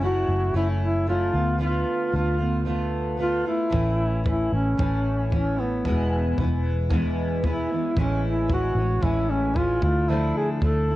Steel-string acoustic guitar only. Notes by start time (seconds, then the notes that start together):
0.00 F#3 A3 C#4 E4
0.54 F#3 A3 C#4 E4
1.07 F#3 A3 C#4 E4
1.33 A3 B3 F4
1.58 D3 A3 B3 F4
2.12 D3 A3 B3 F4
2.38 A3 B3 F4
2.65 D3 A3 B3 F4
3.17 D3 A3 B3 F4
3.44 A3 B3 F4
3.70 A2 E3 A3 C#4 E4
4.24 E3 A3 C#4 E4
4.77 A2 E3 A3 C#4 E4
5.30 E3 A3 C#4 E4
5.56 C#4 E4
5.60 A3
5.85 E2 B2 E3 G#3 B3 E4
6.37 E3 G#3 B3 E4
6.89 E2 B2 E3 G#3 B3 E4
7.43 E3 G#3 B3 E4
7.69 E3 G#3 B3 E4
7.96 A2 E3 G#3 C#4 E4
8.48 E3 G#3 C#4 E4
8.76 G#3 C#4 E4
9.01 A2 E3 G#3 C#4 E4
9.54 E3 G#3 C#4 E4
9.80 D4 E4
9.85 A3
10.09 D3 F3 A3 D4 E4
10.60 F3 A3 D4
10.64 E4
10.88 A3 D4 E4